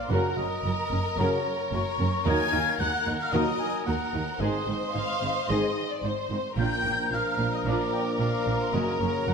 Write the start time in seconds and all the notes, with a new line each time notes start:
Already playing: C5 F5 C6
0.10 F#1 F#2 C#3 F#3 A#3 C#4 F#4 A#4 F#5 A#5
0.37 F#1 F#2 C#4 D#5
0.63 F#1 F#2 C#4 F#4
0.90 F#1 F#2 C#4
1.17 F#1 F#2 C#3 F#3 A#3 C#4 F#4 A#4 C#5
1.72 F#1 F#2 C#4 F#4 C#5 C#6
1.98 F#1 F#2 C#4
2.25 D#2 D#3 F#3 A#3 D#4 F#4 A#4 D#5 G#5 G#6
2.52 D#2 D#4 F5
2.79 D#2 D#4 F#4 F#5 F#6
3.06 D#2 D#4
3.19 F5 F6
3.32 D#2 D#3 F#3 A#3 D#4 F#4 A#4 D#5 D#6
3.60 G#5
3.86 D#2 D#4 F#4 A#4 F#5 A#5
4.13 D#2 D#4
4.39 G#1 G#2 D#3 G#3 C4 D#4 G#4 C5 D#5 C6
4.67 G#1 G#2 C4 D#4
4.94 G#1 G#2 D#4 F5
5.22 G#1 G#2 C4 D#4
5.48 G#1 G#2 D#3 G#3 C4 D#4 G#4 D#5
5.91 D5
6.03 G#1 G#2 D#4 C5 C6
6.30 G#1 G#2 C4 D#4
6.57 A#1 A#2 F3 A#3 D4 F4 A#4 G5 G6
6.84 A#1 A#2 A#3 D4
7.11 A#1 A#2 D4 F5 F6
7.38 A#1 A#2 A#3 D4
7.53 D#5 D#6
7.64 A#1 A#2 D4 F4 D5 F5 D6
7.93 G5
8.19 A#1 A#2 D4 D5 F5 D6
8.46 A#1 A#2 A#3 D4
8.60 C5 C6
8.72 F#1 F#2 C#3 F#3 C#4 F#4 A#4 D#5 A#5
8.99 F#1 F#2 A#3 C#4 C#5
9.26 F#1 F#2 C#4 F#5